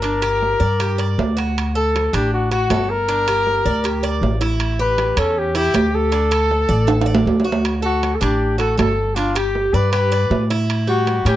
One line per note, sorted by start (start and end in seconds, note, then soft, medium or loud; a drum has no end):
0.00 0.55 G1 medium
0.00 0.21 D4 medium
0.00 1.38 A#4 loud
0.00 high timbale medium
0.22 0.59 G4 medium
0.22 high timbale medium
0.42 low timbale medium
0.60 1.14 G2 medium
0.60 0.79 D5 medium
0.80 0.98 G4 medium
0.80 high timbale medium
0.98 1.36 D5 medium
0.98 high timbale medium
1.18 2.07 D2 medium
1.18 low timbale medium
1.37 1.74 F#4 medium
1.37 high timbale medium
1.58 high timbale medium
1.75 2.12 A4 medium
1.75 2.16 A4 loud
1.96 high timbale medium
1.96 low timbale medium
2.13 2.66 A1 medium
2.13 2.50 D4 medium
2.13 2.33 G4 medium
2.13 high timbale medium
2.34 2.51 F#4 medium
2.51 2.70 F#4 medium
2.51 2.91 F#4 medium
2.51 high timbale medium
2.70 3.60 G1 medium
2.70 3.07 A4 medium
2.70 high timbale medium
2.70 low timbale medium
2.90 4.41 A#4 loud
3.08 3.27 D4 medium
3.08 high timbale medium
3.28 3.64 G4 medium
3.28 high timbale medium
3.47 low timbale medium
3.65 4.18 D2 medium
3.65 3.84 D5 medium
3.84 4.02 G4 medium
3.84 high timbale medium
4.03 4.40 D5 medium
4.03 high timbale medium
4.21 5.11 A1 medium
4.21 low timbale medium
4.41 4.78 E4 medium
4.41 high timbale medium
4.60 high timbale medium
4.79 5.16 G4 medium
4.79 5.19 B4 loud
4.98 high timbale medium
4.98 low timbale medium
5.17 5.70 E2 medium
5.17 5.54 C#4 medium
5.17 5.40 A4 medium
5.17 high timbale medium
5.38 5.56 G4 medium
5.55 5.74 E4 medium
5.55 5.96 G4 loud
5.55 high timbale medium
5.74 6.63 D2 medium
5.74 6.11 G4 medium
5.74 high timbale medium
5.74 low timbale medium
5.95 7.46 A4 loud
6.12 6.31 D4 medium
6.12 high timbale medium
6.31 6.68 A4 medium
6.31 high timbale medium
6.51 low timbale medium
6.69 7.22 A1 medium
6.69 6.87 D5 medium
6.87 7.06 A4 medium
6.87 high timbale medium
7.01 high timbale medium
7.06 7.44 D5 medium
7.15 low timbale medium
7.26 8.15 D2 medium
7.26 low timbale medium
7.40 low timbale medium
7.44 7.82 F#4 medium
7.52 low timbale medium
7.65 high timbale medium
7.82 8.17 F#4 medium
7.82 8.20 A4 medium
8.03 high timbale medium
8.03 low timbale medium
8.15 8.23 A4 medium
8.21 8.74 A1 medium
8.21 8.58 D4 medium
8.21 8.58 G4 medium
8.21 high timbale medium
8.58 8.77 F#4 medium
8.58 8.77 A4 medium
8.58 high timbale medium
8.78 9.67 G1 medium
8.78 9.15 A4 medium
8.78 9.17 A4 medium
8.78 high timbale medium
8.78 low timbale medium
9.15 9.35 D4 medium
9.15 9.37 F4 medium
9.15 high timbale medium
9.35 9.72 G4 medium
9.35 9.75 G4 medium
9.35 high timbale medium
9.55 low timbale medium
9.73 10.26 G2 medium
9.73 9.91 B4 medium
9.73 9.92 D5 medium
9.92 10.11 G4 medium
9.92 10.45 B4 loud
9.92 high timbale medium
10.12 10.48 D5 medium
10.12 high timbale medium
10.30 11.19 A2 medium
10.30 low timbale medium
10.50 10.87 E4 medium
10.50 high timbale medium
10.70 high timbale medium
10.87 11.24 G3 medium
10.87 11.24 F#4 medium
11.07 high timbale medium
11.07 low timbale medium
11.25 11.36 A2 medium
11.25 11.36 C#4 medium
11.25 11.36 G4 loud
11.25 high timbale medium